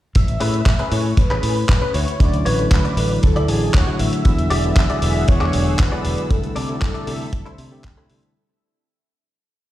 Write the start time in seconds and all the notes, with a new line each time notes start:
0.15 A1 E5, kick, closed hi-hat
0.28 closed hi-hat
0.40 A2 C#4 G#4 B4, open hi-hat
0.54 closed hi-hat
0.66 A1, kick, clap, closed hi-hat
0.79 C#4 G#4 B4, closed hi-hat
0.92 A2 C#5, open hi-hat
1.17 A1 B4, kick, closed hi-hat
1.30 C#4 G#4 B4, clap, closed hi-hat
1.43 A2, open hi-hat
1.69 A1 B4, kick, clap, closed hi-hat
1.81 C#4 G#4 B4
1.94 D2 E4 F#4 C#5, open hi-hat
2.08 closed hi-hat
2.20 D2 D3 F#3 A3 C#4 E4 D5, kick, closed hi-hat
2.33 closed hi-hat
2.45 A1 E4 F#4 B4 C#5, open hi-hat
2.59 D3 F#3 A3 C#4 E4, closed hi-hat
2.71 D2, kick, clap, closed hi-hat
2.84 E4 F#4 D5, closed hi-hat
2.97 A1 D3 F#3 A3 E4, open hi-hat
3.23 D2 A4, kick, closed hi-hat
3.36 D3 F#3 A3 E4 F#4 D5, closed hi-hat
3.48 A1 G#4 A5, open hi-hat
3.74 D2 C#5 F#5, kick, clap, closed hi-hat
3.86 D3 F#3 A3 E4 F#4 C#5
3.94 F#5
3.99 A1 E5, open hi-hat
4.13 closed hi-hat
4.25 E2 D3 F#3 G#3 B3 E4 G#4 F#5 E6, kick, closed hi-hat
4.39 closed hi-hat
4.50 E1 F#4 G#4 D5, open hi-hat
4.64 D3 F#3 G#3 B3 E4, closed hi-hat
4.76 E2, kick, clap, closed hi-hat
4.90 F#4 G#4 D5, closed hi-hat
5.02 E1 D3 F#3 G#3 B3 E4 E5, open hi-hat
5.28 E2 C#5, kick, closed hi-hat
5.40 D3 F#3 G#3 B3 D4 F#4 G#4 D5, clap, closed hi-hat
5.53 E1, open hi-hat
5.79 E2 B4, kick, clap, closed hi-hat
5.91 D3 F#3 G#3 B3 E4 F#4 G#4 D5
6.04 E1, open hi-hat
6.18 closed hi-hat
6.30 C2 D3 G3 A3 C4 E4 A4 E5, kick, closed hi-hat
6.43 closed hi-hat
6.56 C3 E4 A4 D5, open hi-hat
6.68 D3 G3 A3 C4 E4, closed hi-hat
6.82 C2, kick, clap, closed hi-hat
6.94 E4 A4 D5, closed hi-hat
7.06 C3 D3 G3 A3 C4 E4, open hi-hat
7.33 C2, kick, closed hi-hat
7.46 D3 G3 A3 C4 D4 E4 A4 C5, closed hi-hat
7.58 C3, open hi-hat
7.71 D3 G3 A3 C4 G4
7.84 C2, kick, clap, closed hi-hat
7.97 D3 G3 A3 C4 E4 A4 C5
8.10 C3 D3 G3 A3 C4 E4, open hi-hat
8.23 closed hi-hat